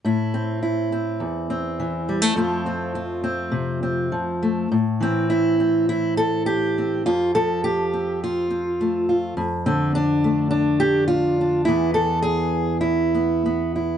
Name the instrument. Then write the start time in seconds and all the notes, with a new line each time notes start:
steel-string acoustic guitar
0.05 A2 E4
0.34 C4
0.63 E4
0.92 C4
1.20 E2
1.50 C4
1.80 E3
2.09 G3
2.22 A3
2.36 F2 F3 A3 C4 F4
2.66 C4
2.95 F4
3.24 C4
3.52 C3
3.83 C4
4.12 F3
4.43 A3
4.72 A2
5.00 E3 C4
5.30 E4
5.60 C4
5.89 E4
6.17 A4
6.46 G4
6.78 C4
7.06 F2 F4
7.35 F3 A4
7.64 G4
7.93 C4
8.24 F4
8.50 C4
8.81 A3
9.09 F4
9.37 F2
9.66 D3 C4
9.95 D4
10.24 A3
10.51 D4
10.80 G4
11.08 F4
11.41 D4
11.65 E2 E3 B3 E4
11.94 E3 A4
12.22 G#4
12.81 E4
13.15 B3
13.46 B3
13.76 E4